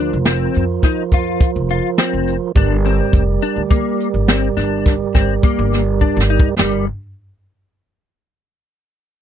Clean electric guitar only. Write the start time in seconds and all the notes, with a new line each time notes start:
0.00 D4
0.28 C4
0.84 D#4
1.14 F4
1.71 F4
1.99 C4
2.57 D4
2.86 C4
3.42 D4
3.70 A#3
4.29 C4
4.57 D4
5.15 C4
5.44 A#3
6.01 D4
6.30 D#4
6.59 G3